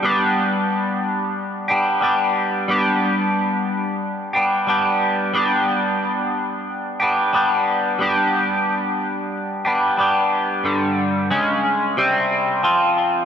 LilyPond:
\new Staff \with { instrumentName = "Clean electric guitar" } { \time 4/4 \key g \mixolydian \tempo 4 = 90 <g b d' g'>2~ <g b d' g'>8 <g b d' g'>8 <g b d' g'>4 | <g b d' g'>2~ <g b d' g'>8 <g b d' g'>8 <g b d' g'>4 | <g b d' g'>2~ <g b d' g'>8 <g b d' g'>8 <g b d' g'>4 | <g b d' g'>2~ <g b d' g'>8 <g b d' g'>8 <g b d' g'>4 |
<g, d g>4 <cis gis cis'>4 <c g c'>4 <f c' f'>4 | }